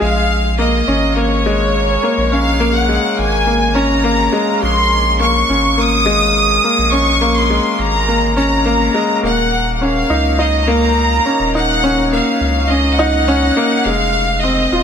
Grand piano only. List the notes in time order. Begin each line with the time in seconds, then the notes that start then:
0.00 G#3
0.59 A#3
0.88 C#4
1.16 A#3
1.46 G#3
2.03 A#3
2.32 C#4
2.60 A#3
2.88 G#3
3.46 A#3
3.75 C#4
4.04 A#3
4.32 G#3
4.62 G#3
5.20 A#3
5.49 C#4
5.78 A#3
6.06 G#3
6.64 A#3
6.92 C#4
7.21 A#3
7.50 G#3
8.08 A#3
8.37 C#4
8.66 A#3
8.94 G#3
9.23 A#3
9.81 C#4
10.10 D#4
10.39 D#4
10.68 A#3
11.26 C#4
11.55 D#4
11.83 C#4
12.13 A#3
12.70 C#4
12.99 D#4
13.28 C#4
13.57 A#3
13.86 G#3
14.44 C4
14.72 F4